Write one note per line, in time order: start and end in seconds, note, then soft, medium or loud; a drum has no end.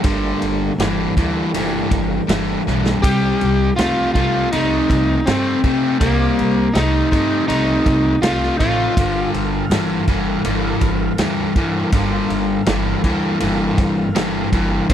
0.04 0.30 G1 medium
0.04 0.72 G2 medium
0.04 0.72 D3 medium
0.04 2.99 G3 medium
0.04 2.99 A3 medium
0.04 3.00 A#3 medium
0.04 kick loud
0.04 ride medium
0.41 0.67 G1 medium
0.41 ride medium
0.78 1.04 G1 medium
0.78 1.13 G2 medium
0.78 1.13 E3 medium
0.78 snare loud
0.78 ride medium
1.17 1.42 D2 medium
1.17 1.51 G2 medium
1.17 1.51 E3 medium
1.17 kick medium
1.17 ride medium
1.54 1.80 G1 medium
1.54 2.21 G2 medium
1.54 2.21 E3 medium
1.54 ride medium
1.91 2.17 G1 medium
1.91 kick medium
1.91 ride medium
2.27 2.54 G1 medium
2.27 2.61 G2 medium
2.27 2.62 E3 medium
2.27 snare loud
2.27 ride medium
2.67 2.92 B1 medium
2.67 3.00 G2 medium
2.67 3.00 E3 medium
2.67 snare medium
2.86 snare medium
3.02 3.29 C2 medium
3.02 3.69 C3 medium
3.02 3.70 G3 medium
3.02 5.97 D#4 medium
3.02 3.76 G4 loud
3.02 5.97 D5 medium
3.02 5.97 A#5 medium
3.02 kick loud
3.02 ride loud
3.41 3.67 C2 medium
3.41 ride medium
3.76 4.04 C2 medium
3.76 4.11 C3 medium
3.76 4.11 A3 medium
3.76 4.12 F4 medium
3.76 snare loud
3.76 ride medium
4.13 4.41 C2 medium
4.13 4.48 C3 medium
4.13 4.49 A3 medium
4.13 4.49 F4 medium
4.13 kick medium
4.13 ride medium
4.52 4.78 C2 medium
4.52 5.19 C3 medium
4.52 5.20 A3 medium
4.52 5.28 D#4 loud
4.52 ride medium
4.89 5.15 C2 medium
4.89 kick medium
4.89 ride medium
5.26 5.52 G2 medium
5.26 5.60 C3 medium
5.26 5.60 A3 loud
5.26 6.00 C4 medium
5.26 snare loud
5.26 ride medium
5.64 5.97 C3 medium
5.64 5.89 C3 medium
5.64 5.97 A3 medium
5.64 kick medium
5.64 ride medium
6.00 6.26 C2 medium
6.00 6.67 C3 medium
6.00 6.68 G3 medium
6.00 6.77 A#3 medium
6.00 8.94 C4 medium
6.00 8.94 D#4 medium
6.00 8.94 D5 medium
6.00 kick loud
6.00 ride medium
6.39 6.64 C2 medium
6.39 ride medium
6.74 7.00 C2 medium
6.74 7.08 C3 medium
6.74 7.08 A3 medium
6.74 7.44 D#4 medium
6.74 snare loud
6.74 ride medium
7.11 7.38 G2 medium
7.11 7.45 C3 medium
7.11 7.45 A3 medium
7.11 kick medium
7.11 ride medium
7.48 7.74 C2 medium
7.48 8.15 C3 medium
7.48 8.15 A3 medium
7.48 8.19 D#4 medium
7.48 ride medium
7.86 8.11 C2 medium
7.86 kick medium
7.86 ride medium
8.21 8.47 C2 medium
8.21 8.56 C3 medium
8.21 8.57 A3 medium
8.21 8.58 F4 medium
8.21 snare loud
8.21 ride medium
8.43 snare soft
8.59 8.85 A1 medium
8.59 8.94 C3 medium
8.59 8.94 A3 medium
8.59 9.30 F4 medium
8.59 kick medium
8.59 ride medium
8.96 9.22 G1 medium
8.96 9.65 G2 medium
8.96 9.65 D3 medium
8.96 11.90 A4 medium
8.96 11.91 A#4 medium
8.96 11.91 F5 medium
8.96 kick loud
8.96 ride loud
9.34 9.59 G1 medium
9.34 ride medium
9.70 9.96 G1 medium
9.70 10.05 G2 medium
9.70 10.05 E3 loud
9.70 snare loud
9.70 ride medium
10.08 10.34 G1 medium
10.08 10.42 G2 medium
10.08 10.42 E3 medium
10.08 kick medium
10.08 ride medium
10.45 10.70 G1 medium
10.45 11.12 G2 medium
10.45 11.12 E3 medium
10.45 ride medium
10.81 11.07 G1 medium
10.81 kick medium
10.81 ride medium
11.18 11.44 D2 medium
11.18 11.53 G2 medium
11.18 11.53 E3 medium
11.18 snare loud
11.18 ride medium
11.56 11.81 G2 medium
11.56 11.90 G2 medium
11.56 11.90 E3 medium
11.56 kick medium
11.56 ride medium
11.92 12.18 G1 medium
11.92 12.60 G2 medium
11.92 12.61 D3 loud
11.92 14.87 A#3 medium
11.92 14.87 A4 medium
11.92 14.87 F5 medium
11.92 kick loud
11.92 ride medium
12.29 12.55 G1 medium
12.29 ride medium
12.66 12.92 G1 medium
12.66 13.01 G2 medium
12.66 13.01 E3 medium
12.66 snare loud
12.66 ride medium
13.03 13.29 D2 medium
13.03 13.38 G2 medium
13.03 13.38 E3 medium
13.03 kick medium
13.03 ride medium
13.40 13.67 G1 medium
13.40 14.08 G2 medium
13.40 14.08 E3 medium
13.40 ride medium
13.77 14.03 G1 medium
13.77 kick medium
13.77 ride medium
14.15 14.41 G1 medium
14.15 14.49 G2 medium
14.15 14.49 E3 loud
14.15 snare loud
14.15 ride medium
14.52 14.78 G1 medium
14.52 14.86 G2 medium
14.52 14.87 E3 medium
14.52 kick medium
14.52 ride medium
14.88 14.94 D#2 medium
14.88 14.94 D#3 medium
14.88 14.94 A#3 medium
14.88 14.94 F4 medium
14.88 14.94 G4 medium
14.88 14.94 D5 medium
14.88 kick loud
14.88 ride medium